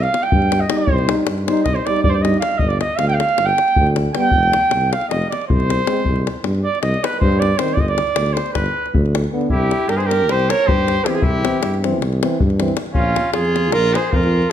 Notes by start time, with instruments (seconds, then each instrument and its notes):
0.02 flugelhorn F5, davul high
0.14 davul high
0.23 flugelhorn G5, davul high
0.32 tuba G2, davul low
0.42 davul high
0.52 davul high
0.60 flugelhorn D#5
0.70 euphonium G3 D#4, davul high
0.78 flugelhorn C5, davul high
0.87 tuba C2, davul low
0.98 davul high
1.08 euphonium G3 D#4, davul high
1.17 davul high
1.26 tuba G2, davul high
1.38 davul high
1.47 euphonium G3 D#4, flugelhorn C5, davul high
1.57 davul high
1.63 tuba C2, flugelhorn D#5, davul high, davul low
1.75 flugelhorn C5, davul high
1.86 euphonium G3 D#4, flugelhorn D5, davul high
1.96 davul high
2.03 tuba G2, flugelhorn D5, davul low
2.09 flugelhorn C5 D5
2.14 davul high
2.22 euphonium G3 D#4, flugelhorn D#5, davul high
2.34 davul high
2.40 flugelhorn F5, davul high
2.52 davul high
2.58 tuba G1, flugelhorn D#5, davul low
2.68 flugelhorn D5, davul high
2.80 flugelhorn D#5, davul high
2.97 tuba D2, flugelhorn F5, davul high
3.08 flugelhorn G5, davul high
3.13 flugelhorn F5
3.19 flugelhorn F5, davul high
3.29 davul high
3.38 tuba G1, davul high
3.46 flugelhorn G5, davul high
3.58 davul high
3.68 davul high
3.76 tuba D2, davul low
3.87 davul high
3.96 davul high
4.14 euphonium G3 B3, flugelhorn G5, davul high
4.23 davul high
4.31 tuba F1, davul low
4.43 davul high
4.53 davul high
4.71 tuba C2, davul high
4.81 davul high
4.91 flugelhorn F5, davul high
5.01 davul high
5.09 tuba F1, flugelhorn D#5, davul high
5.22 davul high
5.30 flugelhorn D5, davul high
5.41 davul high
5.48 tuba C2, flugelhorn C5, davul low
5.60 davul high
5.70 davul high
5.87 euphonium G#3 C4, davul high
5.97 davul high
6.04 tuba C2, davul low
6.16 davul high
6.27 davul high
6.44 tuba G2, davul high
6.55 davul high
6.64 flugelhorn D5
6.75 davul high
6.81 tuba C2, flugelhorn D#5, davul high
6.94 davul high
7.04 flugelhorn B4, davul high
7.13 davul high
7.19 tuba G2, flugelhorn C5, davul low
7.32 davul high
7.40 flugelhorn D5, davul high
7.58 euphonium D#3 C4, flugelhorn C5, davul high
7.68 davul high
7.74 tuba G1, flugelhorn D5, davul low
7.80 flugelhorn D#5
7.88 flugelhorn D5, davul high
7.98 davul high
8.07 davul high
8.16 tuba D2, davul high
8.26 davul high
8.33 flugelhorn C5, davul high
8.46 davul high
8.53 tuba G1, flugelhorn B4, davul high, davul low
8.66 davul high
8.86 davul high
8.95 tuba D2, davul low
9.06 davul high
9.15 davul high
9.24 davul high
9.32 euphonium D3 B3
9.41 davul high
9.50 tuba C2, trumpet E4, flugelhorn G4, davul low
9.71 davul high
9.88 tuba G2, trumpet G4, flugelhorn A#4, davul high
9.96 trumpet G#4, flugelhorn C5
10.00 davul high
10.05 trumpet G4, flugelhorn A#4
10.11 davul high
10.28 tuba C2, trumpet G4, flugelhorn C5, davul high
10.40 davul high
10.49 trumpet A#4, flugelhorn C#5, davul high
10.67 tuba G2, trumpet G4, flugelhorn C5, davul low
10.78 davul high
10.88 davul high
10.97 davul high
11.05 euphonium E3 C4, trumpet F4, flugelhorn G#4, davul high
11.10 trumpet E4, flugelhorn G4 G#4
11.14 trumpet F4, davul high
11.21 tuba C2, trumpet E4, flugelhorn G4, davul low
11.44 euphonium E3 C4, davul high
11.62 tuba G2, davul high
11.74 davul high
11.83 euphonium E3 C4, davul high
12.00 tuba C2, davul high
12.13 davul high
12.22 euphonium E3 C4, davul high
12.40 tuba G2, davul low
12.50 davul high
12.59 euphonium E3 C4, davul high
12.68 davul high
12.77 davul high
12.86 davul high
12.94 tuba A#1, trumpet C#4, flugelhorn F4, davul low
13.16 davul high
13.32 tuba F2, trumpet F4, flugelhorn G#4, davul high
13.45 davul high
13.56 davul high
13.72 tuba A#1, trumpet F4, flugelhorn A#4, davul high
13.84 davul high
13.94 trumpet G#4, flugelhorn C5, davul high
14.12 tuba F2, trumpet F4, flugelhorn A#4, davul low
14.23 davul high
14.42 davul high